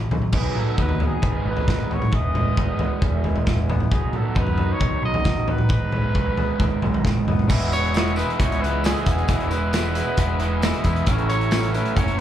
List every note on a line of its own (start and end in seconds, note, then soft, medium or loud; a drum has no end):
0.00 0.33 A3 medium
0.00 0.33 C#4 medium
0.00 0.11 G#4 medium
0.11 0.31 B1 medium
0.11 0.32 F#2 medium
0.11 0.32 C#3 medium
0.11 0.32 F#3 medium
0.11 floor tom medium
0.11 mid tom medium
0.22 floor tom medium
0.32 0.51 B1 medium
0.32 1.21 B2 medium
0.32 1.21 D#3 medium
0.32 1.22 F#3 medium
0.32 1.23 B3 medium
0.32 1.24 D#4 medium
0.32 0.61 G#4 medium
0.32 1.25 B4 medium
0.32 kick medium
0.32 floor tom medium
0.32 crash loud
0.55 1.23 F#3 medium
0.55 0.80 A4 medium
0.55 mid tom medium
0.78 1.14 D#2 medium
0.78 2.16 D#4 medium
0.78 1.07 B4 medium
0.78 kick loud
0.78 floor tom medium
0.89 floor tom medium
1.00 1.90 B3 soft
1.00 floor tom medium
1.05 1.48 G#4 medium
1.22 1.41 G#1 medium
1.22 2.12 G#2 medium
1.22 2.12 D#3 medium
1.22 2.12 G#3 medium
1.22 2.13 B3 medium
1.22 2.15 D#4 medium
1.22 2.15 B4 medium
1.22 kick loud
1.22 floor tom medium
1.45 1.63 G#1 medium
1.45 2.13 G#3 medium
1.50 1.95 B4 medium
1.57 floor tom medium
1.68 2.04 G#1 medium
1.68 2.13 D#3 medium
1.68 kick loud
1.68 snare medium
1.68 mid tom medium
1.90 2.79 B3 medium
1.90 2.14 C#5 medium
1.90 floor tom medium
2.02 mid tom medium
2.12 2.49 E1 medium
2.12 3.90 E2 medium
2.12 3.91 E3 medium
2.12 3.91 G#3 medium
2.12 3.92 B3 medium
2.12 3.93 G#4 medium
2.12 2.99 D#5 loud
2.12 kick loud
2.12 floor tom medium
2.34 3.23 G#3 medium
2.34 floor tom medium
2.34 mid tom medium
2.57 2.75 G#1 medium
2.57 4.36 D#4 medium
2.57 kick loud
2.57 floor tom medium
2.79 3.70 B3 medium
2.79 floor tom medium
3.01 3.38 E1 medium
3.01 3.46 E3 medium
3.01 kick loud
3.01 floor tom medium
3.24 3.92 G#3 medium
3.24 floor tom medium
3.36 floor tom medium
3.47 3.83 E1 medium
3.47 3.92 E3 medium
3.47 kick medium
3.47 snare medium
3.47 mid tom medium
3.69 4.58 B3 medium
3.69 floor tom medium
3.69 mid tom medium
3.80 mid tom medium
3.90 4.10 B1 medium
3.90 5.69 B2 medium
3.90 5.68 D#3 medium
3.90 5.70 F#3 medium
3.90 5.71 B3 medium
3.90 5.70 D#4 medium
3.90 4.17 G#4 medium
3.90 5.72 B4 medium
3.90 kick loud
3.90 floor tom medium
4.13 5.01 F#3 medium
4.13 4.40 A4 medium
4.13 mid tom medium
4.35 4.72 F#2 medium
4.35 5.48 D#4 medium
4.35 4.74 B4 medium
4.35 kick loud
4.35 floor tom medium
4.47 floor tom medium
4.58 5.47 B3 medium
4.58 floor tom medium
4.73 5.05 C#5 loud
4.80 4.99 B1 medium
4.80 5.24 D#3 medium
4.80 kick loud
4.80 floor tom medium
5.02 5.21 B1 medium
5.02 5.70 F#3 medium
5.02 5.51 D#5 loud
5.14 floor tom medium
5.24 5.62 A1 loud
5.24 5.70 D#3 medium
5.24 kick loud
5.24 snare medium
5.24 mid tom medium
5.47 6.38 B3 medium
5.47 7.06 B4 medium
5.47 floor tom medium
5.58 mid tom medium
5.69 6.06 G#1 medium
5.69 7.47 G#2 medium
5.69 7.48 D#3 medium
5.69 7.48 G#3 medium
5.69 7.49 B3 medium
5.69 7.50 D#4 medium
5.69 7.50 B4 medium
5.69 kick loud
5.69 floor tom medium
5.92 6.81 G#3 medium
5.92 floor tom medium
5.92 mid tom medium
6.15 6.33 B1 medium
6.15 7.27 D#4 medium
6.15 kick loud
6.15 floor tom medium
6.37 7.26 B3 medium
6.37 floor tom medium
6.60 6.78 G#1 medium
6.60 7.04 D#3 medium
6.60 kick loud
6.60 floor tom medium
6.82 7.03 B1 medium
6.82 7.48 G#3 medium
6.82 floor tom medium
6.94 floor tom medium
7.04 7.25 G#1 medium
7.04 7.48 D#3 medium
7.04 kick loud
7.04 snare medium
7.04 mid tom medium
7.27 7.47 F#1 medium
7.27 7.50 B3 medium
7.27 floor tom medium
7.27 mid tom medium
7.39 mid tom medium
7.48 8.22 E1 loud
7.48 8.18 E2 loud
7.48 7.94 B2 loud
7.48 7.73 E3 loud
7.48 7.72 G#3 loud
7.48 7.72 B3 loud
7.48 7.70 E4 loud
7.48 kick loud
7.48 crash loud
7.48 tambourine medium
7.62 closed hi-hat soft
7.71 7.93 E3 medium
7.71 7.94 G#3 medium
7.71 7.95 B3 medium
7.71 7.96 E4 medium
7.71 8.14 C#5 loud
7.71 closed hi-hat medium
7.71 tambourine medium
7.85 closed hi-hat soft
7.93 8.18 E3 medium
7.93 8.17 G#3 medium
7.93 8.17 B3 medium
7.93 8.16 E4 medium
7.93 snare loud
7.93 closed hi-hat medium
7.93 tambourine medium
8.07 closed hi-hat soft
8.16 8.62 E2 medium
8.16 8.62 B2 medium
8.16 8.39 E3 medium
8.16 8.40 G#3 medium
8.16 8.40 B3 loud
8.16 8.42 E4 medium
8.16 8.34 B4 loud
8.16 closed hi-hat medium
8.16 tambourine medium
8.30 closed hi-hat soft
8.34 8.41 B4 medium
8.40 8.93 C#2 medium
8.40 8.65 E3 medium
8.40 8.63 G#3 medium
8.40 8.62 B3 medium
8.40 8.62 E4 medium
8.40 8.64 C#5 medium
8.40 kick loud
8.40 closed hi-hat loud
8.52 closed hi-hat soft
8.63 8.85 E3 medium
8.63 8.85 G#3 medium
8.63 8.86 B3 medium
8.63 8.87 E4 medium
8.63 8.84 B4 medium
8.63 closed hi-hat medium
8.84 9.27 E2 medium
8.84 9.27 B2 medium
8.84 9.09 E3 medium
8.84 9.07 G#3 medium
8.84 9.06 B3 medium
8.84 9.06 E4 loud
8.84 9.05 G#4 medium
8.84 snare loud
8.84 closed hi-hat loud
8.84 tambourine medium
8.96 closed hi-hat soft
9.06 9.24 E1 medium
9.06 9.29 E3 medium
9.06 9.29 G#3 medium
9.06 9.29 B3 medium
9.06 9.30 E4 medium
9.06 9.53 G#4 medium
9.06 kick medium
9.06 closed hi-hat medium
9.06 tambourine medium
9.18 closed hi-hat soft
9.28 10.01 E1 medium
9.28 9.73 E2 loud
9.28 9.73 B2 loud
9.28 9.52 E3 loud
9.28 9.51 G#3 loud
9.28 9.49 B3 medium
9.28 9.49 E4 loud
9.28 kick loud
9.28 closed hi-hat loud
9.28 tambourine medium
9.40 closed hi-hat soft
9.50 9.72 E3 medium
9.50 9.72 G#3 medium
9.50 9.73 B3 medium
9.50 9.75 E4 medium
9.50 10.85 B4 medium
9.50 closed hi-hat medium
9.50 tambourine medium
9.72 9.96 E3 medium
9.72 9.95 G#3 medium
9.72 9.95 B3 medium
9.72 9.95 E4 medium
9.72 snare medium
9.72 closed hi-hat loud
9.72 tambourine loud
9.95 10.41 E2 medium
9.95 10.41 B2 medium
9.95 10.17 E3 medium
9.95 10.17 G#3 medium
9.95 10.18 B3 medium
9.95 10.19 E4 medium
9.95 closed hi-hat medium
9.95 tambourine medium
10.17 10.71 E1 medium
10.17 10.41 E3 medium
10.17 10.39 G#3 medium
10.17 10.39 B3 medium
10.17 10.38 E4 medium
10.17 kick loud
10.17 closed hi-hat loud
10.39 10.62 E3 medium
10.39 10.62 G#3 medium
10.39 10.62 B3 medium
10.39 10.64 E4 medium
10.39 closed hi-hat medium
10.61 11.05 E2 medium
10.61 11.05 B2 medium
10.61 10.86 E3 medium
10.61 10.84 G#3 loud
10.61 10.84 B3 loud
10.61 10.84 E4 loud
10.61 snare loud
10.61 closed hi-hat loud
10.61 tambourine loud
10.74 closed hi-hat soft
10.84 11.02 E2 medium
10.84 11.06 E3 medium
10.84 11.06 G#3 medium
10.84 11.06 B3 medium
10.84 11.08 E4 medium
10.84 kick medium
10.84 closed hi-hat medium
10.84 tambourine medium
10.96 closed hi-hat soft
11.05 11.79 A1 loud
11.05 11.77 A2 medium
11.05 11.52 E3 loud
11.05 11.32 F#3 medium
11.05 11.32 A3 medium
11.05 11.31 C#4 loud
11.05 11.29 E4 loud
11.05 kick loud
11.05 closed hi-hat loud
11.05 tambourine medium
11.18 closed hi-hat soft
11.29 11.53 A3 medium
11.29 11.54 C#4 medium
11.29 11.55 E4 medium
11.29 11.71 C#5 medium
11.29 closed hi-hat medium
11.29 tambourine medium
11.33 11.53 F#3 medium
11.41 closed hi-hat soft
11.51 11.77 A2 medium
11.51 11.77 E3 medium
11.51 11.76 F#3 medium
11.51 11.76 A3 medium
11.51 11.75 C#4 medium
11.51 snare loud
11.51 closed hi-hat medium
11.51 tambourine medium
11.55 11.74 E4 medium
11.63 closed hi-hat soft
11.73 11.96 F#3 medium
11.73 11.98 A3 medium
11.73 11.99 C#4 medium
11.73 12.00 E4 medium
11.73 11.98 B4 medium
11.73 closed hi-hat medium
11.73 tambourine medium
11.77 12.20 A2 medium
11.77 11.98 E3 medium
11.85 closed hi-hat soft
11.95 12.21 F#1 loud
11.95 12.20 A2 medium
11.95 12.21 E3 medium
11.95 12.19 F#3 medium
11.95 12.20 C#5 loud
11.95 kick loud
11.95 closed hi-hat medium
11.99 12.21 A3 medium
11.99 12.21 C#4 medium
11.99 12.20 E4 medium
12.08 closed hi-hat soft